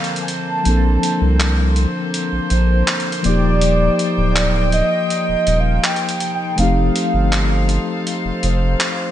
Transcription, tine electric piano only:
Already playing: D3 F3 A#3 C4 A4
0.64 F3 A#3 C4
0.68 D4 A4
3.23 F3 A#3
3.27 D#4 G4
6.56 F3 A3 C4
6.61 D#4 G4

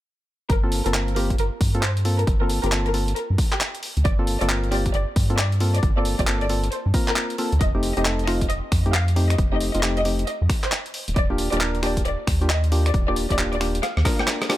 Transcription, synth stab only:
0.63 A#3 C4 F4 A4
0.86 A#3 C4 F4 A4
0.94 A#3 C4 F4 A#4
1.16 A#3 C4 F4 G4
1.75 A#3 C4 F4 A4
2.05 A#3 C4 F4 A4
2.41 A#3 C4 F4 A4
2.64 A#3 C4 F4 G4
2.72 A#3 C4 F4 A4
2.94 A#3 C4 F4 A4
4.19 A#3 C4 F4 A4
4.41 A#3 C4 F4 A4
4.49 A#3 C4 F4 A#4
4.72 A#3 C4 F4 G4
5.30 A#3 C4 F4 A4
5.61 A#3 C4 F4 A4
5.97 A#3 C4 F4 A4
6.19 A#3 C4 F4 G4
6.27 A#3 C4 F4 A4
6.49 A#3 C4 F4 A4
6.94 A#3 C4 F4 A#4
7.38 A#3 C4 F4 A4
7.75 A3 C4 D#4 G4
7.97 A3 C4 D#4 G4
8.05 A3 C4 D#4 A4
8.27 A3 C4 D#4 F4
8.86 A3 C4 D#4 G4
9.16 A3 C4 D#4 G4
9.52 A3 C4 D#4 G4
9.75 A3 C4 D#4 F4
9.83 A3 C4 D#4 G4
10.05 A3 C4 D#4 G4
11.30 A#3 D4 F4 G4
11.52 A#3 D4 F4 G4
11.60 A#3 D4 F4 A#4
11.83 A#3 D4 F4 G4
12.41 A#3 D4 F4 G4
12.72 A#3 D4 F4 G4
13.08 A#3 D4 F4 G4
13.30 A#3 D4 F4 G4
13.38 A#3 D4 F4 G4
13.61 A#3 D4 F4 G4
14.05 A#3 D4 F4 A#4
14.49 A#3 D4 F4 G4

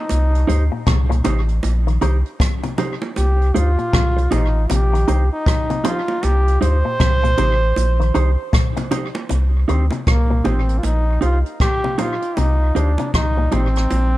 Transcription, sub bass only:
0.11 C2
0.49 D2
0.87 C2
1.26 A1
1.64 A#1
2.03 C2
3.18 C2
3.56 D2
3.94 C2
4.32 A1
4.71 A#1
5.09 C2
6.24 C2
6.62 D2
7.01 C2
7.39 A1
7.77 A#1
8.16 C2
9.31 C2
9.69 D2
10.08 C2
10.46 A1
10.84 A#1
11.23 C2
12.38 C2
12.76 D2
13.14 C2
13.53 A1
13.92 A#1

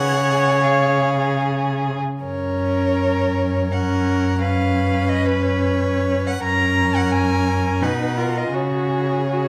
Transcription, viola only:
Already playing: C#5
2.23 C#4
3.71 C#4
4.42 C#4
6.43 C#4
7.81 D#4
8.17 F4
8.53 F#4
9.29 F#4

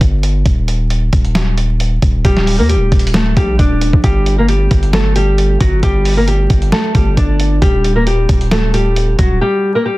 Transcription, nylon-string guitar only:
2.25 G3 G4
2.59 A#3 A#4
2.69 G3 G4
3.14 A3 A4
3.37 G3 G4
3.59 D4 D5
4.04 G3 G4
4.38 A#3 A#4
4.49 G3 G4
4.93 A3 A4
5.16 G3 G4
5.60 F#3 F#4
5.83 G3 G4
6.17 A#3 A#4
6.28 G3 G4
6.72 A3 A4
6.95 G3 G4
7.17 D4 D5
7.62 G3 G4
7.96 A#3 A#4
8.07 G3 G4
8.52 A3 A4
8.74 G3 G4
9.18 F#3 F#4
9.41 G3 G4
9.75 A#3 A#4
9.86 G3 G4

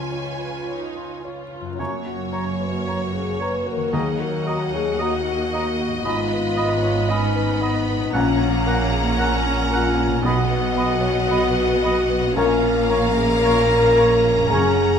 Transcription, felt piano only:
Already playing: C#2 F4
0.12 C#5
0.40 B4
0.68 C#5
0.96 F4
1.25 C#5
1.53 F4
1.79 F#2
2.06 F#4
2.33 C#5
2.60 B4
2.87 C#5
3.13 F#4
3.40 C#5
3.66 F#4
3.93 D#2
4.20 F#4
4.47 D#5
4.74 C#5
5.00 D#5
5.27 F#4
5.54 D#5
5.80 F#4
6.05 G#2
6.31 B3
6.57 D#5
6.83 C#5
7.09 D#5
7.34 B3
7.62 D#5
7.88 B3
8.14 A#1
8.41 C#4
8.66 A#4
8.93 G#4
9.19 A#4
9.45 C#4
9.71 A#4
9.97 C#4
10.23 B1
10.49 B3
10.75 D#5
11.01 C#5
11.28 D#5
11.55 B3
11.83 D#5
12.09 B3
12.36 A#1
12.63 C#4
12.90 A#4
13.16 G#4
13.42 A#4
13.69 C#4
13.96 A#4
14.23 C#4
14.50 F#2
14.77 C#4

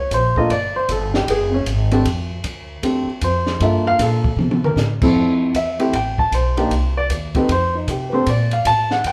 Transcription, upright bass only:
0.11 A#1
0.50 G1
0.89 G1
1.27 F#1
1.66 G#1
2.05 F2
2.44 D2
2.83 E2
3.06 muted upright bass stroke
3.22 F2
3.60 G2
3.99 A#2
4.36 C3
4.76 A2
5.15 F2
5.54 E2
5.93 A1
6.32 B1
6.71 C2
7.10 D#2
7.49 F2
7.87 C3
8.27 A#2
8.65 A2
9.04 F2

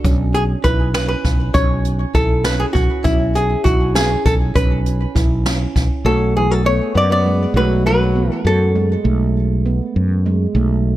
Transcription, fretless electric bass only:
0.05 B1
0.64 B1
1.25 B1
1.54 B1
2.14 B1
2.75 B1
3.05 B1
3.65 B1
4.26 B1
4.56 B1
5.16 B1
5.76 B1
6.05 B1
6.95 F#2
7.54 B1
8.45 F#2
9.05 B1
9.96 F#2
10.55 B1

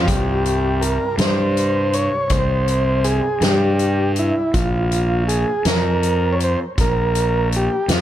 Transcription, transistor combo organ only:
0.06 G4
0.81 A#4
1.20 C5
1.94 C#5
2.32 C5
3.04 G#4
3.42 G4
4.19 E4
4.54 F4
5.28 G#4
5.67 A#4
6.33 C#5
6.44 C5
6.81 A#4
7.56 G4
7.89 F4

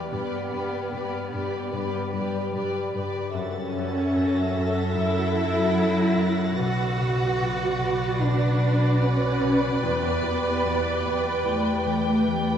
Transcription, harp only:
Already playing: E2 E3
0.12 G2
0.52 G2
0.92 G2
1.33 G2
1.73 G2
2.13 G3
2.53 G3
2.94 G2
3.34 F#2
3.74 F#2
4.15 F#2
4.56 F#2
4.96 F#2
5.36 F#3
5.78 F#3
6.19 F#2
6.59 B2
7.00 B2
7.40 B2
7.80 B2
8.20 B2
8.61 B3
9.03 B3
9.43 B2
9.83 E2
10.24 E2
10.65 E2
11.06 E2
11.45 E2
11.85 E3
12.26 E3

